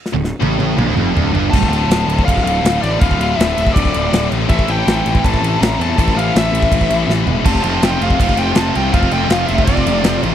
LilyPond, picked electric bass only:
\new Staff \with { instrumentName = "Picked electric bass" } { \clef bass \time 4/4 \key d \minor \tempo 4 = 162 r16 d,,8 r16 a,,8 a,,8 bes,,16 d,,16 f,,8 d,,8 g,,8 | d,,8 d,,8 d,,8 d,,8 d,,8 d,,8 d,,8 a,,8 | d,,8 d,,8 d,,8 d,,8 d,,8 d,,8 d,,8 a,,8 | a,,8 a,,8 a,,8 a,,8 a,,8 a,,8 a,,8 e,8 |
a,,8 a,,8 a,,8 a,,8 a,,8 a,,8 a,,8 e,,8 | f,,8 f,,8 f,,8 f,,8 f,,8 f,,8 f,,8 c,8 | f,,8 f,,8 f,,8 f,,8 f,,8 f,,8 f,,8 a,,8 | }